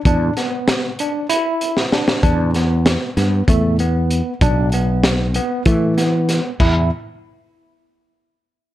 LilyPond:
<<
  \new Staff \with { instrumentName = "Tine electric piano" } { \time 7/8 \key e \minor \tempo 4 = 96 d'8 b4 d'8 e'4 d'8 | d'8 b4 b8 a8 b4 | d'8 b4 b8 a8 b4 | e'8 r2. | }
  \new Staff \with { instrumentName = "Fretless electric bass" } { \clef bass \time 7/8 \key e \minor e,8 r2. | e,4. g,8 e,4. | b,,2 e4. | e,8 r2. | }
  \new DrumStaff \with { instrumentName = "Drums" } \drummode { \time 7/8 <hh bd>8 <hh sn>8 <hh sn>8 hh8 hh8 hh16 sn16 sn16 sn16 | <hh bd>8 <hh sn>8 <hh sn>8 <hh sn>8 <hh bd>8 hh8 hh8 | <hh bd>8 hh8 <hh sn>8 hh8 <hh bd>8 <hh sn>8 <hh sn>8 | <cymc bd>4 r4 r4. | }
>>